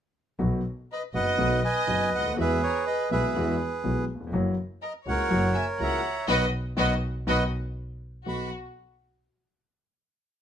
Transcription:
0.39 grand piano B1 B2 D#3 F#3 B3 F#4, double bass B1
0.92 violin section B4, bandoneon D#5
1.14 double bass F#1, grand piano F#1 F#2 D#3 F#3 B3 F#4, bandoneon B4 D#5 F#5, violin section D#5
1.38 double bass B1, grand piano B1 B2 D#3 F#3 B3 F#4
1.64 bandoneon B4 D#5 G#5, violin section D#5
1.87 double bass F#1, grand piano F#1 F#2 D#3 F#3 B3 F#4
2.13 double bass D2, violin section D#5, bandoneon F#5
2.18 grand piano C#2
2.25 grand piano D2
2.31 grand piano D#2
2.37 double bass E2, grand piano E2 E3 G#3 B3 F#4, bandoneon G#4 B4 E5, violin section B4
2.63 violin section A#4, bandoneon C#5
2.86 violin section B4, bandoneon D#5
3.11 double bass B1, grand piano B1 B2 E3 G#3 B3 F#4, bandoneon G#4 B4 E5, violin section B4
3.35 double bass E2, grand piano E2 E3 G#3 B3 F#4
3.84 grand piano B1 B2 E3 G#3 B3 F#4, double bass B1
4.15 grand piano D#2
4.20 grand piano E2
4.27 grand piano F2
4.33 double bass F#1, grand piano F#2 E3 F#3 A#3 C#4 F#4
4.82 violin section A#4, bandoneon D#5
5.06 grand piano C#2 C#3 E3 A#3 C#4 F#4, double bass C#2, bandoneon A#4 C#5 F#5, violin section C#5
5.30 double bass F#1, grand piano F#2 E3 F#3 A#3 C#4 F#4
5.54 violin section E5, bandoneon G#5
5.79 double bass C#2, grand piano C#2 C#3 E3 A#3 C#4 F#4, bandoneon C#5 E5 A#5, violin section F#5
6.27 double bass B1, grand piano D#3 F#3 B3, violin section F#4 B4 D#5, bandoneon B4 D#5 F#5
6.77 double bass B1, grand piano D#3 F#3 B3, violin section F#4 B4 D#5, bandoneon B4 D#5 F#5
7.27 double bass B1, grand piano D#3 F#3 B3, violin section F#4 B4 D#5, bandoneon B4 D#5 F#5
8.26 grand piano B1 B3 D#4 F#4, double bass B1, violin section F#4, bandoneon B5

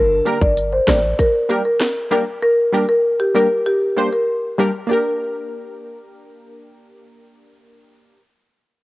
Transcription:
Already playing: 808-style bass G1, clean electric guitar D3 D4, marimba A#4
0.25 synth stab G3 A#3 D4 G4 A#4, closed hi-hat
0.41 808-style bass G1, marimba D5, kick
0.57 closed hi-hat
0.72 marimba C5
0.87 808-style bass A1, synth stab G3 A#3 D4 G4 A#4, marimba D5, kick, cross-stick, snare, closed hi-hat
1.19 marimba A#4, kick, closed hi-hat
1.49 synth stab G3 A#3 D4 G4 A#4, closed hi-hat
1.65 marimba A#4
1.80 cross-stick, snare, closed hi-hat
2.11 synth stab G3 A#3 D4 G4 A#4, closed hi-hat
2.42 marimba A#4
2.73 synth stab G3 A#3 D4 G4 A#4
2.89 marimba A#4
3.20 marimba G4
3.35 synth stab G3 A#3 D4 G4 A#4, marimba A#4
3.66 marimba G4
3.96 synth stab G3 A#3 D4 G4 C5
4.13 marimba A#4
4.58 synth stab G3 A#3 D4 G4 A#4
4.87 synth stab A#3 D4, marimba A#4
4.91 synth stab G4 A#4

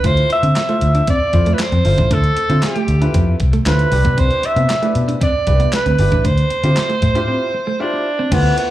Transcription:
0.04 fingered electric bass D2, clean electric guitar D4, grand piano E4 F4 A4 C5, alto saxophone C5, kick, closed hi-hat
0.17 closed hi-hat
0.30 alto saxophone E5, muted clean electric guitar stroke, closed hi-hat
0.43 fingered electric bass D3, clean electric guitar C4, closed hi-hat
0.56 snare, clap, closed hi-hat
0.68 clean electric guitar A3, grand piano E4 F4 A4 C5, closed hi-hat
0.81 fingered electric bass D2, muted clean electric guitar stroke, closed hi-hat
0.95 clean electric guitar D4, closed hi-hat
1.07 clean electric guitar C4, alto saxophone D5, kick, closed hi-hat
1.33 fingered electric bass F2, grand piano E4 F4 A4 C5, muted clean electric guitar stroke, kick, closed hi-hat
1.46 clean electric guitar A3, closed hi-hat
1.54 alto saxophone B4
1.59 alto saxophone C5, snare, clap, closed hi-hat
1.72 fingered electric bass F2, clean electric guitar C4, closed hi-hat
1.84 fingered electric bass G1, grand piano E4 F4 A4 C5, muted clean electric guitar stroke, open hi-hat
1.98 fingered electric bass A1, clean electric guitar D4, kick, closed hi-hat
2.11 fingered electric bass D2, clean electric guitar D4, alto saxophone A4, kick, closed hi-hat
2.24 closed hi-hat
2.37 muted clean electric guitar stroke, closed hi-hat
2.49 fingered electric bass D3, clean electric guitar C4, grand piano E4 F4 A4 C5, closed hi-hat
2.62 alto saxophone G4, snare, clap, closed hi-hat
2.76 clean electric guitar A3, closed hi-hat
2.88 fingered electric bass D2, muted clean electric guitar stroke, closed hi-hat
3.01 clean electric guitar D4, grand piano E4 F4 A4 B4, closed hi-hat
3.14 fingered electric bass F2, clean electric guitar C4, kick, closed hi-hat
3.40 fingered electric bass C2, muted clean electric guitar stroke, kick, closed hi-hat
3.53 clean electric guitar A3, closed hi-hat
3.66 fingered electric bass D2, clean electric guitar D4, grand piano E4 F4 A4 C5, alto saxophone B4, snare, clap, closed hi-hat
3.79 muted clean electric guitar stroke, closed hi-hat
3.92 fingered electric bass C2, grand piano D4 E4 G4 B4, open hi-hat
4.05 clean electric guitar B3, kick, closed hi-hat
4.17 clean electric guitar C4, alto saxophone C5, kick, closed hi-hat
4.31 closed hi-hat
4.43 alto saxophone E5, muted clean electric guitar stroke, closed hi-hat
4.56 fingered electric bass C3, clean electric guitar B3, closed hi-hat
4.69 snare, clap, closed hi-hat
4.82 clean electric guitar A3, grand piano D4 E4 G4 B4, closed hi-hat
4.95 fingered electric bass B2, muted clean electric guitar stroke, closed hi-hat
5.08 clean electric guitar D4, closed hi-hat
5.21 clean electric guitar C4, alto saxophone D5, kick, closed hi-hat
5.47 fingered electric bass C2, grand piano D4 E4 G4 B4, muted clean electric guitar stroke, kick, closed hi-hat
5.60 clean electric guitar B3, closed hi-hat
5.72 alto saxophone B4, snare, clap, closed hi-hat
5.86 fingered electric bass D2, clean electric guitar C4, closed hi-hat
5.98 fingered electric bass G1, grand piano D4 E4 G4 B4, muted clean electric guitar stroke, open hi-hat
6.12 fingered electric bass A1, clean electric guitar D4, kick, closed hi-hat
6.25 fingered electric bass D2, clean electric guitar D4, alto saxophone C5, kick, closed hi-hat
6.38 closed hi-hat
6.50 muted clean electric guitar stroke, closed hi-hat
6.63 fingered electric bass D3, clean electric guitar C4, grand piano E4 F4 G4 C5, closed hi-hat
6.76 snare, clap, closed hi-hat
6.90 clean electric guitar A3, closed hi-hat
7.02 fingered electric bass A2, muted clean electric guitar stroke, kick, closed hi-hat
7.15 clean electric guitar D4, grand piano E4 F4 G4 C5, closed hi-hat
7.28 clean electric guitar C4
7.54 muted clean electric guitar stroke
7.67 clean electric guitar A3
7.79 clean electric guitar D4, alto saxophone D4, grand piano E4 F4 G4 C5
7.93 muted clean electric guitar stroke
8.19 clean electric guitar C4
8.31 fingered electric bass D2, alto saxophone B3, clean electric guitar D4, grand piano E4 F4 A4 C5, kick, closed hi-hat, crash
8.58 alto saxophone B3, muted clean electric guitar stroke, closed hi-hat

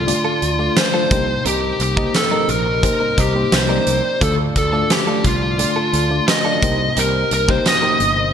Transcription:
Already playing: fretless electric bass C2, fm electric piano D3 A3 D4 F4 A4 D5, lead electric guitar F4
0.07 fm electric piano A3 D4 F4 D5, muted clean electric guitar stroke, closed hi-hat
0.24 clean electric guitar A3 D4 F4 A4
0.42 fretless electric bass D2, muted clean electric guitar stroke, closed hi-hat
0.59 fm electric piano A3 D4 F4 D5, muted clean electric guitar stroke
0.76 lead electric guitar C5, muted clean electric guitar stroke, snare, closed hi-hat
0.93 fm electric piano A3 D4 F4 C5, clean electric guitar A3 D4 F4 A4
1.11 fretless electric bass C2, fm electric piano C3 A#3 D#4 G4 C5, clean electric guitar G3 C4 D#4 A#4, kick, closed hi-hat
1.28 muted clean electric guitar stroke
1.45 fretless electric bass C2, clean electric guitar G3 C4 D#4 A#4, lead electric guitar G4, closed hi-hat
1.80 fretless electric bass C2, lead electric guitar G4, closed hi-hat
1.96 clean electric guitar G3 C4 D#4 A#4, fm electric piano A#3 D#4 G4 D#5, kick
2.14 lead electric guitar A4, snare, closed hi-hat
2.31 clean electric guitar G3 C4 D#4 A#4, fm electric piano A#3 D#4 G4 A#4
2.48 fretless electric bass A#1, lead electric guitar A#4, muted clean electric guitar stroke, closed hi-hat
2.66 muted clean electric guitar stroke
2.82 fm electric piano A#3 D#4 G4 C5, lead electric guitar A#4, muted clean electric guitar stroke, kick, closed hi-hat
3.00 clean electric guitar G3 C4 D#4 A#4
3.17 fretless electric bass C2, clean electric guitar G3 C4 D#4 A#4, lead electric guitar G4, kick, closed hi-hat
3.35 fm electric piano A#3 D#4 G4 C5, muted clean electric guitar stroke
3.52 fretless electric bass C2, lead electric guitar C5, muted clean electric guitar stroke, snare, closed hi-hat
3.69 clean electric guitar G3 C4 D#4 A#4, fm electric piano A#3 D#4 G4 D5
3.86 fretless electric bass C2, clean electric guitar G3 C4 D#4 A#4, closed hi-hat
4.04 muted clean electric guitar stroke
4.20 fretless electric bass D2, fm electric piano D3 A3 D4 F4 D5, clean electric guitar A3 D4 F4 A4, lead electric guitar A4, kick, closed hi-hat
4.56 fretless electric bass D2, lead electric guitar A4, muted clean electric guitar stroke, kick, closed hi-hat
4.72 fm electric piano A3 D4 F4 D5, clean electric guitar A3 D4 F4 A4
4.90 lead electric guitar G4, muted clean electric guitar stroke, snare, closed hi-hat
5.07 fm electric piano A3 D4 F4 D5, clean electric guitar A3 D4 F4 A4
5.24 fretless electric bass C2, lead electric guitar F4, muted clean electric guitar stroke, kick, closed hi-hat
5.42 muted clean electric guitar stroke
5.58 fm electric piano A3 D4 F4 D5, muted clean electric guitar stroke, closed hi-hat
5.76 clean electric guitar A3 D4 F4 A4
5.93 fretless electric bass D2, clean electric guitar A3 D4 F4 A4, closed hi-hat
6.10 fm electric piano A3 D4 F4 D5, muted clean electric guitar stroke
6.28 lead electric guitar D#5, muted clean electric guitar stroke, snare, closed hi-hat
6.45 fm electric piano A3 D4 F4 D5, clean electric guitar A3 D4 F4 A4
6.62 fretless electric bass C2, fm electric piano C3 A#3 D#4 G4 C5, clean electric guitar A#3 D#4 G4 A#4, kick, closed hi-hat
6.80 muted clean electric guitar stroke
6.96 fretless electric bass C2, clean electric guitar A#3 D#4 G4 A#4, lead electric guitar A#4, closed hi-hat
7.31 fretless electric bass C2, lead electric guitar A#4, muted clean electric guitar stroke, closed hi-hat
7.48 fm electric piano A#3 D#4 G4 C5, clean electric guitar A#3 D#4 G4 A#4, lead electric guitar C5, kick
7.65 lead electric guitar D#5, muted clean electric guitar stroke, snare, closed hi-hat
7.82 fm electric piano A#3 D#4 G4 C5, clean electric guitar A#3 D#4 G4 A#4
8.00 fretless electric bass G1, closed hi-hat
8.17 muted clean electric guitar stroke

